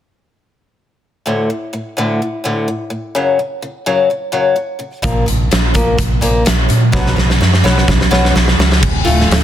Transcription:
1.26 D2 A2 D3
1.50 D2 A2
1.73 D2 A2
1.97 D2 A2 D3
2.22 D2 A2
2.44 D2 A2 D3
2.68 D2 A2
2.90 D2 A2
3.15 F#2 C#3 F#3
3.39 F#2 C#3
3.62 F#2 C#3
3.86 F#2 C#3 F#3
4.10 F#2 C#3
4.32 F#2 C#3 F#3
4.56 F#2 C#3
4.79 F#2 C#3
5.02 A#1 A#2 F3 A#3, kick, closed hi-hat
5.26 A#1 A#2, closed hi-hat
5.51 A#1 A#2 F3, snare, closed hi-hat
5.74 A#2 F3 A#3, kick, closed hi-hat
5.98 A#1 A#2, kick, closed hi-hat
6.21 A#1 A#2 F3 A#3, closed hi-hat
6.45 A#1 A#2 F3, snare, closed hi-hat
6.69 A#2 F3, closed hi-hat
6.92 B1 B2 F#3 B3, kick, snare
7.07 snare
7.16 B1 B2 F#3, snare
7.30 snare
7.40 F#2 B2 F#3, snare
7.54 snare
7.63 B1 B2 F#3 B3, snare
7.78 snare
7.88 B1 B2, kick, snare
8.01 snare
8.11 B1 B2 F#3 B3, snare
8.25 snare
8.35 B1, snare
8.48 snare
8.58 C#2 B2 F#3, snare
8.72 snare
8.83 D1, kick, crash
9.04 D1 A2 D3 A3 F4, open hi-hat
9.21 snare
9.30 D1, snare, open hi-hat

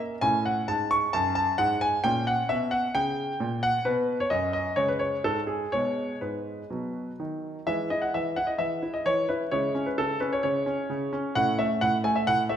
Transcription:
Already playing: A#3 C#4
0.21 A2 C#4 G#5
0.46 F#5
0.68 G#2 A5
0.91 C#6
1.13 F#2 A5
1.35 A5
1.58 G#2 F#5
1.81 G#5
2.04 A#2 C#4 G5
2.27 F#5
2.49 B2 E5
2.71 F#5
2.95 C#3 G5
3.40 A#2
3.63 F#5
3.85 B2 B3 B4
4.20 C#5
4.30 F#2 D#5
4.53 D#5
4.76 C#3 G#3 C#5
4.88 B4
4.99 C#5
5.24 G#2 A4
5.47 G#4
5.72 B2 G#3 C#5
6.21 G#2 B4
6.70 B2 F#3
7.20 D#3
7.67 E3 G#3 E4 E5
7.90 E4 D#5
8.02 F#5
8.14 E3 E5
8.36 E4 F#5
8.47 D#5
8.58 E3 E5
8.82 E4
8.94 D#5
9.06 E3 C#5
9.29 E4 B4
9.51 C#3 G#3 E4 C#5
9.75 C#4
9.86 B4
9.98 C#3 A4
10.20 C#4 B4
10.33 C#5
10.43 C#3 C#5
10.66 C#4
10.90 C#3
11.13 C#4
11.35 A2 A3 C#4 F#5
11.59 A3 E5
11.81 A2 F#5
12.04 A3 G#5
12.16 E5
12.27 A2 F#5
12.49 A3 E5

